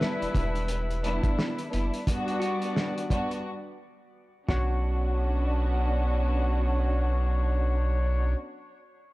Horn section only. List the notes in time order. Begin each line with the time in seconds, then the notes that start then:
Already playing: G3 E4 B4
2.07 G3 B3 D5
4.49 F#3 D4 C#5